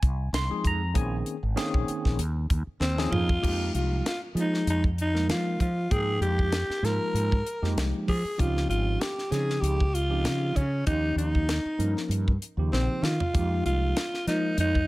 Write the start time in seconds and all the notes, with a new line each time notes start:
Already playing: G#5
0.02 C2, kick, closed hi-hat
0.33 C2 C6, snare, closed hi-hat
0.50 F3 G#3 C4 D#4 G#4
0.64 F2 A#5, kick, closed hi-hat
0.94 A#1 D#3 A#3 C4 C#4 G#4 G#5, kick, closed hi-hat
1.26 closed hi-hat
1.43 G#1
1.56 D#3 A#3 C4 C#4 G#4, snare, closed hi-hat
1.74 A#1, kick
1.88 muted fretless electric bass stroke, closed hi-hat
2.05 A#1, kick, snare
2.19 D#2, closed hi-hat
2.50 D#2, kick, closed hi-hat
2.67 muted fretless electric bass stroke
2.80 D#2 C4, snare
2.98 F3 A#3 C#4 D#4 G#4, snare
3.12 F2 F4, mid tom
3.29 kick
3.42 F2 F3 G#3 A#3 D#4 G4, kick, crash
3.74 C2 F4, closed hi-hat
4.06 F4, snare, closed hi-hat
4.35 F3 G#3 A#3 D#4 G#4, closed hi-hat
4.40 D#4
4.54 snare
4.67 F2 D#4, closed hi-hat
4.84 kick
4.98 D#4, closed hi-hat
5.14 F3 G#3 A#3 D#4 A#4, snare
5.29 F3 F4, snare, closed hi-hat
5.60 F3 F4, kick, closed hi-hat
5.90 G#2 F3 G#3 A#3 D#4 G#4 G5, kick, closed hi-hat
6.21 F2 G4, closed hi-hat
6.39 kick
6.52 snare, closed hi-hat
6.69 muted fretless electric bass stroke, snare
6.82 G#2 F3 G#3 A#3 D#4 F4 A#4, snare, closed hi-hat
7.14 G#2, closed hi-hat
7.32 kick
7.47 closed hi-hat
7.62 F2 F3 G#3 A#3 D#4 G4, snare
7.77 C2, snare, closed hi-hat
8.08 F3 G#4, kick, open hi-hat
8.24 muted fretless electric bass stroke
8.38 C#2 F3 C4 C#4 D#4 F4 G4, kick, closed hi-hat
8.57 snare
8.69 G#1 F4, closed hi-hat
9.01 G4, snare, closed hi-hat
9.18 snare
9.31 C#3 F3 C4 C#4 D#4 G#4, snare, closed hi-hat
9.50 snare
9.60 C#2 G4, closed hi-hat
9.80 kick
9.94 F4, closed hi-hat
10.09 F3 C4 C#4 D#4 G4
10.24 C#3, snare, closed hi-hat
10.56 C#3 C#4, kick, closed hi-hat
10.86 D#2 F3 A#3 C#4 D#4 G4, kick, closed hi-hat
11.16 D#2 D#4, closed hi-hat
11.35 kick
11.49 snare, closed hi-hat
11.65 muted fretless electric bass stroke
11.78 G2 F3 A#3 C#4 D#4 A#4, closed hi-hat
11.97 snare
12.09 G2, closed hi-hat
12.28 kick
12.42 closed hi-hat
12.57 D#2 C#3 F3 A#3 D#4 G4
12.72 A#1 C4, snare
13.02 D#3 F4, snare
13.20 muted fretless electric bass stroke, floor tom
13.33 F2 F3 G#3 A#3 D#4 G4, kick, closed hi-hat
13.65 C2 F4, closed hi-hat
13.97 snare, closed hi-hat
14.14 snare
14.27 F3 G#3 A#3 D#4 A#4, snare, closed hi-hat
14.57 F2 D#4, closed hi-hat
14.75 kick